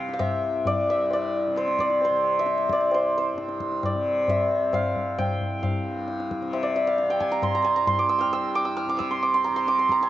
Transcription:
Already playing: tanpura C2 G2 C3, santur C5 F5 G5
0.09 tabla te
0.14 santur F5
0.19 santur E5, tabla na, tabla ge
0.24 tanpura C2
0.65 santur D5, tabla tin, tabla ge
0.87 tanpura G2, santur E5
1.11 santur D5, tabla na
1.47 tanpura C3
1.56 santur C5, tabla te
1.68 tabla te
1.79 santur D5, tabla ke
1.90 tabla te
2.01 santur C5, tabla tin
2.10 tanpura C3
2.24 tabla na
2.39 santur E5
2.46 tabla te
2.58 tabla te
2.69 tanpura C2, santur D5, tabla ke
2.81 tabla te
2.91 santur C5, tabla na
3.18 santur C5
3.33 tanpura G2
3.38 tabla te
3.49 tabla te
3.60 tabla ke
3.72 tabla te
3.83 santur D5, tabla na, tabla ge
3.94 tanpura C3
4.28 santur E5, tabla tin, tabla ge
4.57 tanpura C3
4.73 santur F5, tabla na, tabla ge
4.96 tabla ge
5.18 tanpura C2, santur G5, tabla na, tabla ge
5.41 tabla ge
5.63 santur F5, tabla tin, tabla ge
5.79 tanpura G2
6.08 tabla te
6.20 tabla te
6.31 tabla ke
6.41 tanpura C3, tabla te
6.53 santur E5, tabla na
6.63 santur D5
6.76 santur E5
6.87 santur F5
6.98 tabla te
7.02 tanpura C3
7.10 santur G5, tabla te
7.20 santur G#5, tabla ke
7.31 santur A#5, tabla te
7.42 santur C6, tabla na, tabla ge
7.55 santur A#5
7.62 tanpura C2, santur G#5 A#5
7.76 santur A#5
7.87 santur C6, tabla tin, tabla ge
7.99 santur D6
8.09 santur E6
8.18 santur G5 F6
8.25 tanpura G2
8.33 santur E6, tabla na
8.55 santur D6
8.65 santur E6
8.77 santur F6, tabla te
8.85 tanpura C3, tabla te
8.89 santur D6
8.97 santur E6 F6, tabla ke
9.11 santur C6, tabla te
9.22 santur D6, tabla tin
9.34 santur C6
9.44 tanpura C3, santur A#5
9.56 santur C6
9.67 santur D6, tabla te
9.78 santur C6, tabla te
9.89 santur A#5, tabla ke
10.01 santur G#5, tabla te

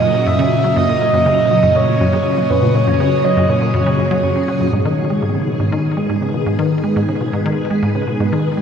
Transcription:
Already playing: string machine A#2 C#3 F#3 F#4 A#4, soft synth lead D#5, synth texture D#6
0.02 synth arpeggio sound A#2
0.14 synth arpeggio sound A#2
0.26 synth arpeggio sound F#2, soft synth lead E5
0.39 synth arpeggio sound C#3
0.64 synth arpeggio sound F#3
0.76 synth arpeggio sound F#2, soft synth lead D#5
0.89 synth arpeggio sound A#2
1.02 synth arpeggio sound A#2
1.14 synth arpeggio sound F#2
1.26 synth arpeggio sound C#3
1.33 string machine G#4
1.51 synth arpeggio sound F#3
1.63 synth arpeggio sound F#2
1.75 synth arpeggio sound A#2, soft synth lead C#5
1.88 synth arpeggio sound A#2
2.01 synth arpeggio sound F#2
2.13 synth arpeggio sound C#3
2.38 synth arpeggio sound F#3
2.50 synth arpeggio sound F#2, soft synth lead B4
2.63 synth arpeggio sound A#2
2.75 synth arpeggio sound A#2, soft synth lead C#5
2.87 synth arpeggio sound F#2
3.00 synth arpeggio sound C#3
3.24 synth arpeggio sound F#3, soft synth lead D#5
3.37 synth arpeggio sound F#2
3.49 synth arpeggio sound A#2, soft synth lead C#5
3.62 synth arpeggio sound A#2
3.74 synth arpeggio sound F#2
3.86 synth arpeggio sound C#3
3.99 synth arpeggio sound F#2
4.11 synth arpeggio sound F#3
4.23 synth arpeggio sound F#2
4.36 synth arpeggio sound C#3
4.48 synth arpeggio sound C#4
4.61 synth arpeggio sound F#2
4.73 synth arpeggio sound G#2, string machine D#3
4.85 synth arpeggio sound D#3, string machine B3
4.93 string machine G#3
5.10 synth arpeggio sound G#3
5.23 synth arpeggio sound G#2
5.35 synth arpeggio sound C#3
5.48 synth arpeggio sound B2
5.60 synth arpeggio sound G#2
5.72 synth arpeggio sound D#3
5.77 string machine B4
5.97 synth arpeggio sound G#3
6.09 synth arpeggio sound G#2
6.22 synth arpeggio sound C#3
6.34 synth arpeggio sound B2
6.46 synth arpeggio sound G#2
6.59 synth arpeggio sound D#3
6.84 synth arpeggio sound G#3
6.96 synth arpeggio sound G#2
7.09 synth arpeggio sound C#3
7.21 synth arpeggio sound B2
7.33 synth arpeggio sound G#2
7.46 synth arpeggio sound D#3
7.70 synth arpeggio sound G#3
7.83 synth arpeggio sound G#2
7.95 synth arpeggio sound C#3
8.08 synth arpeggio sound B2
8.20 synth arpeggio sound G#2
8.32 synth arpeggio sound D#3
8.57 synth arpeggio sound G#3

